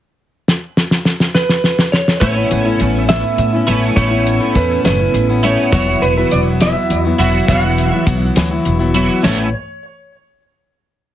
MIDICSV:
0, 0, Header, 1, 6, 480
1, 0, Start_track
1, 0, Key_signature, 3, "major"
1, 0, Tempo, 585366
1, 385, Time_signature, 6, 3, 24, 8
1, 9142, End_track
2, 0, Start_track
2, 0, Title_t, "Electric slide guitar"
2, 0, Program_c, 0, 29
2, 1103, Note_on_c, 0, 71, 76
2, 1548, Note_off_c, 0, 71, 0
2, 1576, Note_on_c, 0, 73, 74
2, 1795, Note_off_c, 0, 73, 0
2, 1805, Note_on_c, 0, 73, 80
2, 2528, Note_off_c, 0, 73, 0
2, 2531, Note_on_c, 0, 76, 84
2, 3248, Note_on_c, 0, 73, 85
2, 3273, Note_off_c, 0, 76, 0
2, 3739, Note_on_c, 0, 71, 73
2, 3745, Note_off_c, 0, 73, 0
2, 3959, Note_off_c, 0, 71, 0
2, 3977, Note_on_c, 0, 71, 84
2, 4467, Note_on_c, 0, 73, 83
2, 4469, Note_off_c, 0, 71, 0
2, 4688, Note_off_c, 0, 73, 0
2, 4698, Note_on_c, 0, 73, 89
2, 4937, Note_on_c, 0, 71, 89
2, 4942, Note_off_c, 0, 73, 0
2, 5054, Note_off_c, 0, 71, 0
2, 5064, Note_on_c, 0, 71, 78
2, 5182, Note_off_c, 0, 71, 0
2, 5182, Note_on_c, 0, 74, 80
2, 5245, Note_off_c, 0, 74, 0
2, 5428, Note_on_c, 0, 76, 90
2, 5887, Note_off_c, 0, 76, 0
2, 5896, Note_on_c, 0, 76, 89
2, 6139, Note_off_c, 0, 76, 0
2, 6143, Note_on_c, 0, 78, 92
2, 7068, Note_off_c, 0, 78, 0
2, 7579, Note_on_c, 0, 73, 72
2, 7803, Note_off_c, 0, 73, 0
2, 9142, End_track
3, 0, Start_track
3, 0, Title_t, "Steel-string acoustic guitar"
3, 0, Program_c, 1, 25
3, 1816, Note_on_c, 1, 45, 79
3, 1820, Note_on_c, 1, 57, 73
3, 1823, Note_on_c, 1, 59, 83
3, 1825, Note_on_c, 1, 61, 74
3, 1828, Note_on_c, 1, 64, 80
3, 1925, Note_off_c, 1, 64, 0
3, 1935, Note_on_c, 1, 64, 55
3, 1936, Note_off_c, 1, 59, 0
3, 1937, Note_off_c, 1, 45, 0
3, 1939, Note_off_c, 1, 57, 0
3, 1942, Note_off_c, 1, 61, 0
3, 1946, Note_on_c, 1, 59, 46
3, 1953, Note_on_c, 1, 61, 43
3, 2164, Note_off_c, 1, 64, 0
3, 2174, Note_on_c, 1, 64, 52
3, 2176, Note_off_c, 1, 59, 0
3, 2185, Note_off_c, 1, 61, 0
3, 2185, Note_on_c, 1, 59, 45
3, 2197, Note_on_c, 1, 61, 40
3, 2291, Note_off_c, 1, 61, 0
3, 2291, Note_on_c, 1, 57, 56
3, 2296, Note_off_c, 1, 64, 0
3, 2297, Note_off_c, 1, 59, 0
3, 2301, Note_on_c, 1, 61, 58
3, 2307, Note_on_c, 1, 59, 61
3, 2313, Note_on_c, 1, 64, 60
3, 2527, Note_off_c, 1, 57, 0
3, 2528, Note_off_c, 1, 61, 0
3, 2531, Note_off_c, 1, 59, 0
3, 2531, Note_on_c, 1, 45, 73
3, 2535, Note_off_c, 1, 64, 0
3, 2537, Note_on_c, 1, 57, 71
3, 2538, Note_on_c, 1, 61, 71
3, 2541, Note_on_c, 1, 59, 79
3, 2545, Note_on_c, 1, 64, 76
3, 2639, Note_off_c, 1, 64, 0
3, 2646, Note_off_c, 1, 59, 0
3, 2649, Note_on_c, 1, 64, 55
3, 2654, Note_off_c, 1, 45, 0
3, 2656, Note_off_c, 1, 57, 0
3, 2656, Note_on_c, 1, 59, 48
3, 2657, Note_off_c, 1, 61, 0
3, 2665, Note_on_c, 1, 61, 41
3, 2882, Note_off_c, 1, 64, 0
3, 2892, Note_on_c, 1, 64, 54
3, 2896, Note_off_c, 1, 59, 0
3, 2900, Note_off_c, 1, 61, 0
3, 2905, Note_on_c, 1, 59, 51
3, 2913, Note_on_c, 1, 61, 46
3, 3007, Note_off_c, 1, 61, 0
3, 3007, Note_on_c, 1, 57, 58
3, 3011, Note_off_c, 1, 59, 0
3, 3013, Note_off_c, 1, 64, 0
3, 3017, Note_on_c, 1, 61, 61
3, 3020, Note_on_c, 1, 59, 62
3, 3024, Note_on_c, 1, 64, 66
3, 3242, Note_off_c, 1, 57, 0
3, 3244, Note_off_c, 1, 61, 0
3, 3249, Note_on_c, 1, 45, 75
3, 3250, Note_off_c, 1, 59, 0
3, 3250, Note_off_c, 1, 64, 0
3, 3251, Note_on_c, 1, 57, 80
3, 3254, Note_on_c, 1, 61, 74
3, 3259, Note_on_c, 1, 59, 84
3, 3260, Note_on_c, 1, 64, 80
3, 3354, Note_off_c, 1, 64, 0
3, 3363, Note_on_c, 1, 64, 57
3, 3364, Note_off_c, 1, 59, 0
3, 3371, Note_off_c, 1, 45, 0
3, 3373, Note_off_c, 1, 57, 0
3, 3374, Note_off_c, 1, 61, 0
3, 3374, Note_on_c, 1, 59, 49
3, 3384, Note_on_c, 1, 61, 46
3, 3599, Note_off_c, 1, 64, 0
3, 3609, Note_on_c, 1, 64, 49
3, 3610, Note_off_c, 1, 59, 0
3, 3619, Note_off_c, 1, 61, 0
3, 3620, Note_on_c, 1, 59, 46
3, 3629, Note_on_c, 1, 61, 36
3, 3721, Note_off_c, 1, 61, 0
3, 3727, Note_on_c, 1, 57, 59
3, 3730, Note_off_c, 1, 59, 0
3, 3731, Note_off_c, 1, 64, 0
3, 3731, Note_on_c, 1, 61, 60
3, 3740, Note_on_c, 1, 59, 65
3, 3744, Note_on_c, 1, 64, 64
3, 3966, Note_off_c, 1, 57, 0
3, 3968, Note_off_c, 1, 61, 0
3, 3971, Note_off_c, 1, 59, 0
3, 3972, Note_on_c, 1, 45, 71
3, 3973, Note_off_c, 1, 64, 0
3, 3976, Note_on_c, 1, 57, 76
3, 3978, Note_on_c, 1, 61, 78
3, 3981, Note_on_c, 1, 59, 81
3, 3983, Note_on_c, 1, 64, 74
3, 4078, Note_off_c, 1, 64, 0
3, 4088, Note_on_c, 1, 64, 51
3, 4090, Note_off_c, 1, 59, 0
3, 4092, Note_off_c, 1, 45, 0
3, 4094, Note_off_c, 1, 57, 0
3, 4095, Note_off_c, 1, 61, 0
3, 4099, Note_on_c, 1, 59, 44
3, 4109, Note_on_c, 1, 61, 41
3, 4328, Note_off_c, 1, 64, 0
3, 4336, Note_off_c, 1, 59, 0
3, 4337, Note_on_c, 1, 64, 47
3, 4341, Note_off_c, 1, 61, 0
3, 4346, Note_on_c, 1, 59, 53
3, 4357, Note_on_c, 1, 61, 42
3, 4453, Note_off_c, 1, 61, 0
3, 4455, Note_off_c, 1, 64, 0
3, 4459, Note_off_c, 1, 59, 0
3, 4459, Note_on_c, 1, 57, 63
3, 4463, Note_on_c, 1, 61, 63
3, 4471, Note_on_c, 1, 59, 64
3, 4473, Note_on_c, 1, 64, 67
3, 4695, Note_off_c, 1, 57, 0
3, 4695, Note_off_c, 1, 59, 0
3, 4695, Note_on_c, 1, 40, 75
3, 4697, Note_off_c, 1, 61, 0
3, 4702, Note_on_c, 1, 52, 76
3, 4703, Note_off_c, 1, 64, 0
3, 4703, Note_on_c, 1, 54, 84
3, 4705, Note_on_c, 1, 59, 78
3, 4709, Note_on_c, 1, 66, 84
3, 4712, Note_on_c, 1, 64, 76
3, 4806, Note_off_c, 1, 64, 0
3, 4813, Note_off_c, 1, 66, 0
3, 4814, Note_off_c, 1, 40, 0
3, 4816, Note_on_c, 1, 64, 57
3, 4817, Note_off_c, 1, 52, 0
3, 4818, Note_off_c, 1, 54, 0
3, 4818, Note_off_c, 1, 59, 0
3, 4823, Note_on_c, 1, 66, 50
3, 4829, Note_on_c, 1, 59, 48
3, 4832, Note_on_c, 1, 54, 47
3, 5050, Note_off_c, 1, 64, 0
3, 5052, Note_off_c, 1, 66, 0
3, 5060, Note_off_c, 1, 59, 0
3, 5060, Note_on_c, 1, 64, 54
3, 5062, Note_off_c, 1, 54, 0
3, 5062, Note_on_c, 1, 66, 45
3, 5070, Note_on_c, 1, 59, 47
3, 5075, Note_on_c, 1, 54, 40
3, 5164, Note_off_c, 1, 54, 0
3, 5169, Note_off_c, 1, 59, 0
3, 5174, Note_off_c, 1, 66, 0
3, 5174, Note_on_c, 1, 54, 57
3, 5176, Note_off_c, 1, 64, 0
3, 5178, Note_on_c, 1, 59, 62
3, 5184, Note_on_c, 1, 66, 64
3, 5188, Note_on_c, 1, 64, 70
3, 5413, Note_off_c, 1, 54, 0
3, 5415, Note_off_c, 1, 59, 0
3, 5416, Note_off_c, 1, 66, 0
3, 5418, Note_on_c, 1, 40, 68
3, 5420, Note_off_c, 1, 64, 0
3, 5420, Note_on_c, 1, 52, 71
3, 5422, Note_on_c, 1, 54, 78
3, 5426, Note_on_c, 1, 66, 80
3, 5427, Note_on_c, 1, 59, 81
3, 5432, Note_on_c, 1, 64, 74
3, 5529, Note_off_c, 1, 64, 0
3, 5535, Note_off_c, 1, 40, 0
3, 5535, Note_off_c, 1, 66, 0
3, 5536, Note_off_c, 1, 52, 0
3, 5537, Note_off_c, 1, 54, 0
3, 5539, Note_on_c, 1, 64, 51
3, 5540, Note_off_c, 1, 59, 0
3, 5545, Note_on_c, 1, 66, 49
3, 5553, Note_on_c, 1, 59, 50
3, 5557, Note_on_c, 1, 54, 42
3, 5770, Note_off_c, 1, 64, 0
3, 5779, Note_off_c, 1, 66, 0
3, 5780, Note_on_c, 1, 64, 53
3, 5783, Note_off_c, 1, 59, 0
3, 5785, Note_off_c, 1, 54, 0
3, 5788, Note_on_c, 1, 66, 48
3, 5794, Note_on_c, 1, 59, 48
3, 5799, Note_on_c, 1, 54, 43
3, 5889, Note_off_c, 1, 54, 0
3, 5896, Note_off_c, 1, 64, 0
3, 5898, Note_off_c, 1, 59, 0
3, 5899, Note_on_c, 1, 54, 63
3, 5900, Note_off_c, 1, 66, 0
3, 5908, Note_on_c, 1, 59, 64
3, 5914, Note_on_c, 1, 66, 65
3, 5920, Note_on_c, 1, 64, 70
3, 6130, Note_off_c, 1, 54, 0
3, 6133, Note_on_c, 1, 40, 73
3, 6134, Note_off_c, 1, 59, 0
3, 6136, Note_off_c, 1, 64, 0
3, 6136, Note_off_c, 1, 66, 0
3, 6139, Note_on_c, 1, 54, 81
3, 6140, Note_on_c, 1, 52, 74
3, 6144, Note_on_c, 1, 59, 76
3, 6146, Note_on_c, 1, 64, 80
3, 6146, Note_on_c, 1, 66, 84
3, 6247, Note_off_c, 1, 64, 0
3, 6253, Note_off_c, 1, 40, 0
3, 6255, Note_off_c, 1, 66, 0
3, 6256, Note_on_c, 1, 64, 56
3, 6257, Note_off_c, 1, 52, 0
3, 6257, Note_off_c, 1, 54, 0
3, 6259, Note_off_c, 1, 59, 0
3, 6265, Note_on_c, 1, 66, 49
3, 6267, Note_on_c, 1, 59, 49
3, 6274, Note_on_c, 1, 54, 47
3, 6485, Note_off_c, 1, 64, 0
3, 6489, Note_off_c, 1, 66, 0
3, 6495, Note_on_c, 1, 64, 51
3, 6497, Note_off_c, 1, 59, 0
3, 6499, Note_on_c, 1, 66, 44
3, 6504, Note_off_c, 1, 54, 0
3, 6507, Note_on_c, 1, 59, 49
3, 6512, Note_on_c, 1, 54, 40
3, 6598, Note_off_c, 1, 54, 0
3, 6605, Note_off_c, 1, 59, 0
3, 6608, Note_on_c, 1, 54, 55
3, 6610, Note_off_c, 1, 66, 0
3, 6614, Note_on_c, 1, 59, 57
3, 6615, Note_off_c, 1, 64, 0
3, 6620, Note_on_c, 1, 66, 64
3, 6625, Note_on_c, 1, 64, 60
3, 6849, Note_off_c, 1, 54, 0
3, 6851, Note_on_c, 1, 40, 82
3, 6852, Note_off_c, 1, 59, 0
3, 6855, Note_off_c, 1, 64, 0
3, 6855, Note_off_c, 1, 66, 0
3, 6856, Note_on_c, 1, 52, 81
3, 6859, Note_on_c, 1, 54, 85
3, 6862, Note_on_c, 1, 59, 89
3, 6865, Note_on_c, 1, 64, 96
3, 6865, Note_on_c, 1, 66, 93
3, 6962, Note_off_c, 1, 64, 0
3, 6967, Note_off_c, 1, 66, 0
3, 6972, Note_off_c, 1, 59, 0
3, 6972, Note_on_c, 1, 64, 60
3, 6973, Note_off_c, 1, 40, 0
3, 6976, Note_off_c, 1, 52, 0
3, 6977, Note_off_c, 1, 54, 0
3, 6977, Note_on_c, 1, 66, 51
3, 6982, Note_on_c, 1, 59, 51
3, 6989, Note_on_c, 1, 54, 51
3, 7197, Note_off_c, 1, 64, 0
3, 7201, Note_off_c, 1, 66, 0
3, 7207, Note_on_c, 1, 64, 63
3, 7209, Note_off_c, 1, 59, 0
3, 7211, Note_on_c, 1, 66, 52
3, 7216, Note_off_c, 1, 54, 0
3, 7219, Note_on_c, 1, 59, 56
3, 7225, Note_on_c, 1, 54, 48
3, 7321, Note_off_c, 1, 54, 0
3, 7327, Note_off_c, 1, 59, 0
3, 7331, Note_off_c, 1, 66, 0
3, 7331, Note_on_c, 1, 54, 62
3, 7332, Note_off_c, 1, 64, 0
3, 7337, Note_on_c, 1, 59, 68
3, 7341, Note_on_c, 1, 66, 71
3, 7348, Note_on_c, 1, 64, 77
3, 7570, Note_off_c, 1, 54, 0
3, 7570, Note_on_c, 1, 45, 83
3, 7573, Note_on_c, 1, 57, 79
3, 7575, Note_off_c, 1, 59, 0
3, 7580, Note_off_c, 1, 66, 0
3, 7580, Note_on_c, 1, 61, 76
3, 7581, Note_off_c, 1, 64, 0
3, 7585, Note_on_c, 1, 59, 81
3, 7591, Note_on_c, 1, 64, 88
3, 7767, Note_off_c, 1, 45, 0
3, 7769, Note_off_c, 1, 57, 0
3, 7772, Note_off_c, 1, 61, 0
3, 7775, Note_off_c, 1, 59, 0
3, 7777, Note_off_c, 1, 64, 0
3, 9142, End_track
4, 0, Start_track
4, 0, Title_t, "Clean electric guitar"
4, 0, Program_c, 2, 27
4, 3031, Note_on_c, 2, 45, 70
4, 3238, Note_off_c, 2, 45, 0
4, 4479, Note_on_c, 2, 45, 74
4, 4690, Note_off_c, 2, 45, 0
4, 5912, Note_on_c, 2, 52, 73
4, 5915, Note_on_c, 2, 40, 65
4, 6125, Note_off_c, 2, 40, 0
4, 6138, Note_off_c, 2, 52, 0
4, 7354, Note_on_c, 2, 52, 73
4, 7358, Note_on_c, 2, 40, 60
4, 7567, Note_off_c, 2, 52, 0
4, 7574, Note_off_c, 2, 40, 0
4, 9142, End_track
5, 0, Start_track
5, 0, Title_t, "Upright bass"
5, 0, Program_c, 3, 32
5, 1814, Note_on_c, 3, 33, 91
5, 1984, Note_off_c, 3, 33, 0
5, 2060, Note_on_c, 3, 33, 82
5, 2228, Note_off_c, 3, 33, 0
5, 2299, Note_on_c, 3, 33, 80
5, 2634, Note_off_c, 3, 33, 0
5, 2772, Note_on_c, 3, 45, 86
5, 2941, Note_off_c, 3, 45, 0
5, 3014, Note_on_c, 3, 33, 83
5, 3183, Note_off_c, 3, 33, 0
5, 3252, Note_on_c, 3, 33, 88
5, 3589, Note_off_c, 3, 33, 0
5, 3735, Note_on_c, 3, 40, 82
5, 3903, Note_off_c, 3, 40, 0
5, 3970, Note_on_c, 3, 30, 85
5, 4139, Note_off_c, 3, 30, 0
5, 4212, Note_on_c, 3, 33, 89
5, 4549, Note_off_c, 3, 33, 0
5, 4696, Note_on_c, 3, 28, 93
5, 4863, Note_off_c, 3, 28, 0
5, 4937, Note_on_c, 3, 28, 82
5, 5104, Note_off_c, 3, 28, 0
5, 5182, Note_on_c, 3, 28, 81
5, 5515, Note_off_c, 3, 28, 0
5, 5660, Note_on_c, 3, 40, 84
5, 5826, Note_off_c, 3, 40, 0
5, 5895, Note_on_c, 3, 28, 82
5, 6063, Note_off_c, 3, 28, 0
5, 6139, Note_on_c, 3, 28, 91
5, 6474, Note_off_c, 3, 28, 0
5, 6615, Note_on_c, 3, 35, 84
5, 6784, Note_off_c, 3, 35, 0
5, 6854, Note_on_c, 3, 38, 84
5, 7024, Note_off_c, 3, 38, 0
5, 7098, Note_on_c, 3, 28, 83
5, 7436, Note_off_c, 3, 28, 0
5, 7578, Note_on_c, 3, 33, 89
5, 7803, Note_off_c, 3, 33, 0
5, 9142, End_track
6, 0, Start_track
6, 0, Title_t, "Drums"
6, 396, Note_on_c, 9, 38, 63
6, 478, Note_off_c, 9, 38, 0
6, 633, Note_on_c, 9, 38, 68
6, 715, Note_off_c, 9, 38, 0
6, 748, Note_on_c, 9, 38, 75
6, 830, Note_off_c, 9, 38, 0
6, 864, Note_on_c, 9, 38, 79
6, 946, Note_off_c, 9, 38, 0
6, 986, Note_on_c, 9, 38, 76
6, 1068, Note_off_c, 9, 38, 0
6, 1105, Note_on_c, 9, 38, 86
6, 1187, Note_off_c, 9, 38, 0
6, 1225, Note_on_c, 9, 38, 80
6, 1307, Note_off_c, 9, 38, 0
6, 1344, Note_on_c, 9, 38, 76
6, 1426, Note_off_c, 9, 38, 0
6, 1465, Note_on_c, 9, 38, 97
6, 1547, Note_off_c, 9, 38, 0
6, 1586, Note_on_c, 9, 38, 91
6, 1668, Note_off_c, 9, 38, 0
6, 1706, Note_on_c, 9, 38, 94
6, 1788, Note_off_c, 9, 38, 0
6, 1815, Note_on_c, 9, 42, 73
6, 1816, Note_on_c, 9, 36, 108
6, 1897, Note_off_c, 9, 42, 0
6, 1898, Note_off_c, 9, 36, 0
6, 2056, Note_on_c, 9, 42, 62
6, 2138, Note_off_c, 9, 42, 0
6, 2292, Note_on_c, 9, 42, 62
6, 2374, Note_off_c, 9, 42, 0
6, 2532, Note_on_c, 9, 42, 89
6, 2540, Note_on_c, 9, 38, 105
6, 2614, Note_off_c, 9, 42, 0
6, 2622, Note_off_c, 9, 38, 0
6, 2774, Note_on_c, 9, 42, 56
6, 2856, Note_off_c, 9, 42, 0
6, 3015, Note_on_c, 9, 42, 65
6, 3097, Note_off_c, 9, 42, 0
6, 3253, Note_on_c, 9, 36, 102
6, 3255, Note_on_c, 9, 42, 82
6, 3335, Note_off_c, 9, 36, 0
6, 3337, Note_off_c, 9, 42, 0
6, 3500, Note_on_c, 9, 42, 63
6, 3582, Note_off_c, 9, 42, 0
6, 3734, Note_on_c, 9, 36, 81
6, 3739, Note_on_c, 9, 42, 63
6, 3816, Note_off_c, 9, 36, 0
6, 3821, Note_off_c, 9, 42, 0
6, 3976, Note_on_c, 9, 42, 81
6, 3984, Note_on_c, 9, 38, 107
6, 4058, Note_off_c, 9, 42, 0
6, 4066, Note_off_c, 9, 38, 0
6, 4218, Note_on_c, 9, 42, 54
6, 4300, Note_off_c, 9, 42, 0
6, 4457, Note_on_c, 9, 42, 57
6, 4539, Note_off_c, 9, 42, 0
6, 4695, Note_on_c, 9, 36, 103
6, 4696, Note_on_c, 9, 42, 75
6, 4777, Note_off_c, 9, 36, 0
6, 4778, Note_off_c, 9, 42, 0
6, 4941, Note_on_c, 9, 42, 55
6, 5023, Note_off_c, 9, 42, 0
6, 5177, Note_on_c, 9, 42, 55
6, 5259, Note_off_c, 9, 42, 0
6, 5416, Note_on_c, 9, 42, 76
6, 5424, Note_on_c, 9, 38, 105
6, 5498, Note_off_c, 9, 42, 0
6, 5506, Note_off_c, 9, 38, 0
6, 5660, Note_on_c, 9, 42, 54
6, 5742, Note_off_c, 9, 42, 0
6, 5901, Note_on_c, 9, 42, 62
6, 5983, Note_off_c, 9, 42, 0
6, 6137, Note_on_c, 9, 36, 102
6, 6141, Note_on_c, 9, 42, 82
6, 6219, Note_off_c, 9, 36, 0
6, 6223, Note_off_c, 9, 42, 0
6, 6381, Note_on_c, 9, 42, 60
6, 6463, Note_off_c, 9, 42, 0
6, 6616, Note_on_c, 9, 36, 77
6, 6617, Note_on_c, 9, 42, 65
6, 6698, Note_off_c, 9, 36, 0
6, 6699, Note_off_c, 9, 42, 0
6, 6855, Note_on_c, 9, 42, 85
6, 6863, Note_on_c, 9, 38, 107
6, 6937, Note_off_c, 9, 42, 0
6, 6945, Note_off_c, 9, 38, 0
6, 7095, Note_on_c, 9, 42, 56
6, 7177, Note_off_c, 9, 42, 0
6, 7335, Note_on_c, 9, 42, 64
6, 7417, Note_off_c, 9, 42, 0
6, 7577, Note_on_c, 9, 49, 82
6, 7585, Note_on_c, 9, 38, 92
6, 7659, Note_off_c, 9, 49, 0
6, 7667, Note_off_c, 9, 38, 0
6, 9142, End_track
0, 0, End_of_file